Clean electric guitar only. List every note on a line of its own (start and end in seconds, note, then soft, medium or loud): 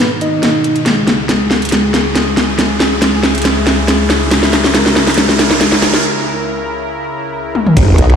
0.21 0.78 D#4 medium
0.21 0.78 D#5 loud
0.86 1.18 G#3 medium
0.86 1.18 G#4 medium
1.29 1.61 G#3 medium
1.29 1.61 G#4 medium
1.72 2.04 G#3 medium
1.72 2.04 G#4 medium
2.15 2.47 G#3 medium
2.15 2.47 G#4 medium
2.59 2.90 G#3 medium
2.59 2.90 G#4 loud
3.02 3.33 G#3 medium
3.02 3.33 G#4 medium
3.45 3.77 G#3 medium
3.45 3.77 G#4 loud
3.88 4.20 G#3 medium
3.88 4.20 G#4 medium
4.31 4.63 G#3 medium
4.31 4.63 G#4 loud
4.74 5.06 G#3 medium
4.74 5.06 G#4 loud
5.17 5.49 G#3 medium
5.17 5.49 G#4 loud
5.61 5.92 G#3 medium
5.61 5.92 G#4 loud